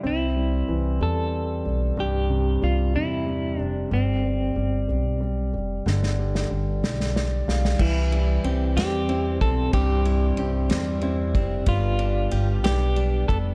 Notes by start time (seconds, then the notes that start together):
0.03 C2 C4 E4
0.36 G3
0.68 C2 E3
1.01 E2 G3 A4
1.65 B1 G3
1.97 C2 G2 G4
2.29 C3
2.62 C2 G3 F4
2.95 E2 C3 E4
3.26 G3
3.58 F1 C3 D4
3.91 G1 G3 C4
4.23 G3
4.56 G1 G3
4.89 B1 G3
5.21 G3
5.54 F1 G3
5.86 G1 D3, snare
5.92 B3
6.03 snare
6.19 G3
6.35 snare
6.50 G1 G3
6.83 B1 G3, snare
7.00 snare
7.16 G3 D5, snare
7.48 B1 G3 F5, snare
7.65 snare
7.79 C2 E3 G3 E4, kick, crash
8.12 G3 E4, ride
8.44 C2 C4 G4, ride
8.76 E2 G3 C4 G4, snare, ride
9.09 C4 E4, ride
9.41 B1 G3 C4 A4, kick, ride
9.73 C2 G2 G3 G4, kick, ride
10.05 G3 E4, ride
10.37 C2 C4 G4, ride
10.69 E2 G3 C4, snare, ride
11.01 C4 E4, ride
11.35 F1 G3 C4, kick, ride
11.66 G1 G3 B3 F4, kick, ride
11.99 D4, ride
12.31 G1 G3 G4, ride
12.64 B1 B3 D4 G4, snare, ride
12.96 G3 D4, ride
13.28 F1 B3 D4 A4, kick, ride